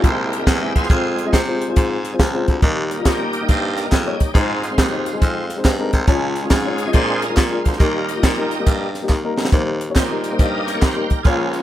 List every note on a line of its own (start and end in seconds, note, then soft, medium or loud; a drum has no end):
0.02 0.40 C2 loud
0.02 0.71 C3 medium
0.02 0.71 G#3 medium
0.02 0.71 A#3 medium
0.02 0.86 E4 medium
0.02 0.46 G4 medium
0.02 0.32 C5 loud
0.02 kick loud
0.02 closed hi-hat medium
0.32 0.47 A#4 medium
0.32 closed hi-hat medium
0.39 0.49 G#3 medium
0.39 0.49 C4 medium
0.39 0.49 E4 medium
0.39 0.50 A#4 medium
0.47 0.71 E2 loud
0.47 0.76 G4 medium
0.47 kick medium
0.47 snare loud
0.47 closed hi-hat medium
0.61 0.80 G#3 medium
0.61 0.81 C4 medium
0.61 0.81 E4 medium
0.61 0.82 G#4 medium
0.75 0.88 E2 medium
0.75 1.16 C4 medium
0.75 1.16 F4 medium
0.75 2.16 G#4 loud
0.75 kick medium
0.75 closed hi-hat medium
0.83 snare soft
0.90 1.26 F2 loud
0.90 1.14 G#3 medium
0.90 1.15 C4 medium
0.90 1.15 F4 medium
0.90 1.15 C5 medium
0.90 kick loud
0.90 closed hi-hat medium
1.15 1.42 G#3 soft
1.15 1.43 C4 soft
1.15 1.43 F4 medium
1.15 closed hi-hat medium
1.25 1.35 G#3 medium
1.25 1.35 C4 medium
1.25 1.36 F4 medium
1.25 1.36 D#5 medium
1.33 1.70 C3 medium
1.33 kick medium
1.33 snare loud
1.33 closed hi-hat loud
1.47 1.62 G#3 medium
1.47 1.63 C4 medium
1.47 1.63 F4 medium
1.47 1.63 C5 medium
1.62 closed hi-hat medium
1.68 1.95 G#3 medium
1.68 1.95 C4 medium
1.68 1.95 F4 medium
1.68 1.96 C5 medium
1.76 2.13 G#2 medium
1.76 kick loud
1.76 closed hi-hat medium
2.04 snare soft
2.04 closed hi-hat medium
2.12 2.22 G#3 medium
2.12 2.22 C4 medium
2.12 2.23 F4 medium
2.12 2.23 C5 medium
2.19 2.43 C#2 medium
2.19 kick medium
2.19 snare loud
2.19 closed hi-hat medium
2.33 2.53 G#3 medium
2.33 2.53 C4 medium
2.33 2.54 F4 medium
2.33 2.54 C5 medium
2.48 2.61 D2 medium
2.48 kick medium
2.48 closed hi-hat medium
2.62 2.99 D#2 loud
2.62 3.30 D#3 medium
2.62 2.87 G3 medium
2.62 2.87 A#3 medium
2.62 2.88 D#4 medium
2.62 2.88 A#4 medium
2.62 kick loud
2.62 closed hi-hat medium
2.62 tambourine medium
2.90 3.46 G3 medium
2.90 3.05 A#3 soft
2.90 3.05 D#4 medium
2.90 closed hi-hat medium
2.90 tambourine soft
2.98 3.08 G3 medium
2.98 3.08 A#3 medium
2.98 3.08 D#4 medium
2.98 3.08 F4 medium
3.05 3.42 A#2 medium
3.05 3.88 A#3 medium
3.05 3.48 D#4 medium
3.05 3.48 G4 medium
3.05 kick medium
3.05 snare loud
3.05 clap medium
3.05 closed hi-hat loud
3.05 tambourine medium
3.19 3.35 G3 medium
3.19 3.35 A#3 medium
3.19 3.35 D#4 medium
3.19 3.36 A#4 medium
3.33 closed hi-hat medium
3.33 tambourine soft
3.41 3.67 G3 medium
3.41 3.68 A#3 medium
3.41 3.68 D#4 medium
3.41 3.68 G4 medium
3.49 3.86 G2 medium
3.49 4.31 D#4 medium
3.49 4.20 G4 medium
3.49 3.76 C5 loud
3.49 kick loud
3.49 closed hi-hat medium
3.49 tambourine medium
3.77 3.91 A#4 medium
3.77 snare soft
3.77 closed hi-hat medium
3.77 tambourine medium
3.84 3.94 G3 medium
3.84 3.94 A#3 medium
3.84 3.95 D#4 medium
3.84 3.95 A#4 medium
3.92 4.16 F2 medium
3.92 4.22 G#4 medium
3.92 kick medium
3.92 snare loud
3.92 clap medium
3.92 closed hi-hat medium
3.92 tambourine medium
4.05 4.25 G3 medium
4.05 4.26 A#3 medium
4.05 4.26 D#4 medium
4.05 4.26 C#5 medium
4.20 4.36 G4 medium
4.20 kick medium
4.20 closed hi-hat medium
4.20 tambourine soft
4.33 4.72 G#2 loud
4.33 5.03 G#2 medium
4.33 4.62 G#3 medium
4.33 4.59 G#3 medium
4.33 4.62 C4 medium
4.33 4.60 C4 medium
4.33 4.68 D#4 medium
4.33 4.60 D#4 medium
4.33 4.62 F4 medium
4.33 4.60 C5 medium
4.33 kick loud
4.33 closed hi-hat medium
4.33 tambourine medium
4.63 5.46 G#3 medium
4.63 5.46 C4 medium
4.63 5.46 F4 medium
4.63 closed hi-hat medium
4.63 tambourine soft
4.70 4.80 G#3 medium
4.70 4.81 C4 medium
4.70 4.81 D#4 medium
4.70 4.81 C5 medium
4.78 5.15 D#2 medium
4.78 kick medium
4.78 snare loud
4.78 clap medium
4.78 closed hi-hat medium
4.78 tambourine medium
4.91 5.07 G#3 medium
4.91 5.08 C4 medium
4.91 5.08 D#4 medium
4.91 5.08 C5 medium
5.06 closed hi-hat medium
5.06 tambourine medium
5.13 5.40 G#3 medium
5.13 5.40 C4 medium
5.13 5.40 D#4 medium
5.13 5.41 G#4 medium
5.22 5.58 F2 medium
5.22 kick loud
5.22 closed hi-hat medium
5.22 tambourine medium
5.50 snare soft
5.50 closed hi-hat medium
5.50 tambourine soft
5.56 5.67 G#3 medium
5.56 5.67 C4 medium
5.56 5.67 D#4 medium
5.56 5.68 C5 medium
5.64 5.89 G2 medium
5.64 kick medium
5.64 snare loud
5.64 clap loud
5.64 closed hi-hat medium
5.64 tambourine medium
5.79 5.98 G#3 medium
5.79 5.99 C4 medium
5.79 5.99 D#4 medium
5.79 5.99 A#4 medium
5.93 6.06 C2 loud
5.93 kick medium
5.93 closed hi-hat medium
5.93 tambourine soft
6.06 6.44 C#2 loud
6.06 6.76 C#3 medium
6.06 6.89 G#3 medium
6.06 6.32 G#3 medium
6.06 6.49 C#4 soft
6.06 6.33 C#4 medium
6.06 6.50 F4 medium
6.06 6.33 F4 medium
6.06 6.33 C#5 medium
6.06 kick loud
6.06 closed hi-hat medium
6.06 tambourine medium
6.36 closed hi-hat medium
6.36 tambourine soft
6.43 6.53 G#3 medium
6.43 6.53 C#4 medium
6.43 6.54 F4 medium
6.43 6.54 G#4 medium
6.50 6.87 G#2 medium
6.50 6.91 C#4 medium
6.50 6.91 F4 medium
6.50 6.92 G#4 medium
6.50 kick medium
6.50 snare loud
6.50 clap medium
6.50 closed hi-hat loud
6.50 tambourine medium
6.64 6.80 G#3 medium
6.64 6.80 C#4 medium
6.64 6.81 F4 medium
6.64 6.81 C#5 medium
6.78 closed hi-hat medium
6.78 tambourine medium
6.85 6.93 G#3 medium
6.85 6.94 C#4 medium
6.85 6.94 F4 medium
6.85 6.94 D#5 medium
6.92 7.61 A#2 medium
6.92 7.31 A#2 loud
6.92 7.25 G#3 medium
6.92 7.26 C4 soft
6.92 7.26 D4 medium
6.92 7.76 F4 medium
6.92 7.34 G#4 medium
6.92 7.23 C5 loud
6.92 kick loud
6.92 closed hi-hat medium
6.92 tambourine medium
7.22 7.37 A#4 medium
7.22 closed hi-hat medium
7.22 tambourine medium
7.28 7.39 G#3 medium
7.28 7.39 D4 medium
7.28 7.39 F4 medium
7.28 7.40 A#4 medium
7.36 7.61 A#2 medium
7.36 7.63 G#4 medium
7.36 kick medium
7.36 snare loud
7.36 clap medium
7.36 closed hi-hat medium
7.36 tambourine medium
7.51 7.71 G#3 medium
7.51 7.71 D4 medium
7.51 7.71 F4 medium
7.51 7.71 A#4 medium
7.64 7.78 D2 medium
7.64 7.80 C5 medium
7.64 kick medium
7.64 closed hi-hat medium
7.64 tambourine soft
7.73 snare soft
7.78 8.17 D#2 loud
7.78 8.48 D#3 medium
7.78 8.12 G3 medium
7.78 8.05 G3 medium
7.78 8.12 A#3 soft
7.78 8.05 A#3 medium
7.78 8.07 D#4 medium
7.78 8.05 D#4 medium
7.78 8.07 G4 medium
7.78 8.07 A#4 medium
7.78 8.06 A#4 medium
7.78 kick loud
7.78 closed hi-hat medium
7.78 tambourine medium
8.08 8.91 D#4 medium
8.08 8.91 G4 medium
8.08 8.91 A#4 medium
8.08 closed hi-hat medium
8.08 tambourine soft
8.15 8.25 G3 medium
8.15 8.26 A#3 medium
8.15 8.26 D#4 medium
8.15 8.26 F4 medium
8.23 8.60 A#2 medium
8.23 kick medium
8.23 snare loud
8.23 clap medium
8.23 closed hi-hat loud
8.23 tambourine medium
8.37 8.53 G3 medium
8.37 8.53 A#3 medium
8.37 8.53 D#4 medium
8.37 8.54 A#4 medium
8.51 closed hi-hat medium
8.51 tambourine soft
8.59 8.85 G3 medium
8.59 8.85 A#3 medium
8.59 8.86 D#4 medium
8.59 8.86 A#4 medium
8.66 9.03 G2 medium
8.66 kick loud
8.66 closed hi-hat medium
8.66 tambourine medium
8.95 snare soft
8.95 closed hi-hat medium
8.95 tambourine soft
9.02 9.12 G3 medium
9.02 9.12 A#3 medium
9.02 9.12 D#4 medium
9.02 9.13 G4 medium
9.09 9.34 D#2 medium
9.09 kick medium
9.09 snare soft
9.09 clap medium
9.09 tambourine medium
9.24 9.43 G3 medium
9.24 9.44 A#3 medium
9.24 9.44 D#4 medium
9.24 9.44 A#4 medium
9.36 9.50 D2 medium
9.36 snare medium
9.36 tambourine medium
9.45 snare medium
9.51 9.89 D#2 medium
9.51 10.20 D#3 medium
9.51 9.77 G3 medium
9.51 9.77 A#3 medium
9.51 9.78 D#4 medium
9.51 9.78 C5 medium
9.51 kick loud
9.51 closed hi-hat medium
9.51 tambourine medium
9.81 closed hi-hat medium
9.81 tambourine soft
9.88 9.98 G3 medium
9.88 9.99 A#3 medium
9.88 9.99 D#4 medium
9.88 9.99 C#5 medium
9.95 10.33 A#2 medium
9.95 10.23 D#4 medium
9.95 10.37 G4 medium
9.95 10.40 C5 medium
9.95 kick medium
9.95 snare loud
9.95 clap medium
9.95 closed hi-hat medium
9.95 tambourine medium
10.10 10.26 G3 medium
10.10 10.26 A#3 medium
10.10 10.26 D#4 medium
10.10 10.27 A#4 medium
10.24 10.79 G3 soft
10.24 10.79 A#3 soft
10.24 10.79 D#4 medium
10.24 closed hi-hat medium
10.24 tambourine medium
10.31 10.58 G3 medium
10.31 10.58 A#3 medium
10.31 10.58 D#4 medium
10.31 10.58 C5 medium
10.38 10.76 G2 medium
10.38 11.21 G4 medium
10.38 11.07 A#4 medium
10.38 10.65 D#5 medium
10.38 kick loud
10.38 closed hi-hat medium
10.38 tambourine medium
10.66 10.82 C#5 medium
10.66 snare soft
10.66 closed hi-hat medium
10.66 tambourine soft
10.74 10.84 G3 medium
10.74 10.85 A#3 medium
10.74 10.85 D#4 medium
10.74 10.85 A#4 medium
10.80 11.06 D#2 medium
10.80 11.11 C5 medium
10.80 kick medium
10.80 snare loud
10.80 clap medium
10.80 closed hi-hat medium
10.80 tambourine medium
10.95 11.16 G3 medium
10.95 11.16 A#3 medium
10.95 11.16 D#4 medium
10.95 11.17 A#4 medium
11.08 11.25 A#4 medium
11.08 kick medium
11.08 closed hi-hat medium
11.08 tambourine soft
11.23 11.62 C#2 loud
11.23 11.62 C#3 medium
11.23 11.62 F3 soft
11.23 11.62 A#3 soft
11.23 11.50 A#3 medium
11.23 11.53 C#4 medium
11.23 11.50 C#4 medium
11.23 11.52 F4 medium
11.23 11.50 F4 medium
11.23 11.51 G#4 medium
11.23 11.51 C#5 medium
11.23 kick loud
11.23 closed hi-hat medium
11.23 tambourine medium
11.52 11.62 C#4 medium
11.52 11.62 F4 medium
11.52 11.62 G#4 medium
11.52 closed hi-hat medium
11.52 tambourine soft